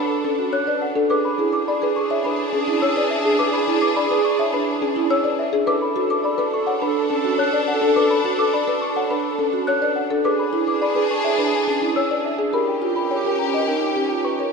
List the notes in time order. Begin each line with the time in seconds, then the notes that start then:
Already playing: D4 A4 B4 B5
0.07 A4
0.24 C#4 A4
0.36 F#4 A4
0.53 C#5 F#6
0.67 A4 B4 D5
0.82 F#5
0.95 D4 A4
1.10 D4 G#4 B4 D6
1.25 B5
1.38 E4 G#4
1.53 B4 D6
1.68 G#4 D5 B5
1.82 G#4 B4
1.96 G#4 C#6
2.10 C#5 E5
2.24 D4 G#4 B4 B5
2.53 C#4 G#4
2.59 G#4
2.68 E4
2.82 C#5 E6
2.88 G#4
2.96 B4 D5
3.10 E5
3.18 G#4
3.25 D4 G#4
3.39 G#4 B4 D6
3.46 G#4
3.53 B5
3.68 E4 G#4
3.76 G#4
3.82 B4 D6
3.96 D5 B5
4.06 G#4
4.11 G#4 B4
4.25 C#6
4.35 G#4 C#5
4.39 E5
4.53 D4 B4 B5
4.66 G#4
4.82 C#4 G#4
4.94 E4 G#4
5.11 C#5 E6
5.24 G#4 B4 D5
5.39 E5
5.53 D4 G#4
5.67 D4 A4 B4 D6
5.82 B5
5.96 F#4 A4
6.10 B4 D6
6.24 A4 D5 B5
6.38 A4 B4
6.54 A4 C#6
6.67 C#5 F#5
6.82 D4 A4 B4 B5
7.10 C#4 A4
7.14 A4
7.24 F#4
7.38 C#5 F#6
7.44 A4
7.53 B4 D5
7.68 F#5
7.73 A4
7.81 D4 A4
7.96 A4 B4 D6
8.03 A4
8.10 B5
8.24 F#4 A4
8.32 A4
8.39 B4 D6
8.53 D5 B5
8.63 A4
8.68 A4 B4
8.82 C#6
8.92 A4
8.96 C#5 F#5
9.10 D4 B4 B5
9.21 A4
9.39 C#4 A4
9.51 F#4 A4
9.67 C#5 F#6
9.81 A4 B4 D5
9.96 F#5
10.10 D4 A4
10.24 D4 G#4 B4 D6
10.39 B5
10.53 E4 G#4
10.67 B4 D6
10.82 G#4 D5 B5
10.95 G#4 B4
11.11 C#6
11.16 G#4
11.24 C#5 E5
11.38 D4 B4 B5
11.47 G#4
11.67 C#4 G#4
11.77 G#4
11.82 E4
11.96 C#5 E6
12.08 G#4 B4 D5
12.25 E5
12.38 D4 G#4
12.53 C#4 G4 A#4 B5
12.68 G5
12.82 F4 G4
12.96 A#4 B5
13.10 C#5 G5
13.15 G4
13.25 G4 A#4
13.39 A#5
13.45 G4
13.53 B4 D#5
13.67 D#4 A#4 G5
13.76 G4
13.96 C#4 G4
14.06 G4
14.11 F4
14.24 B4 C#6
14.38 G4 A#4 C#5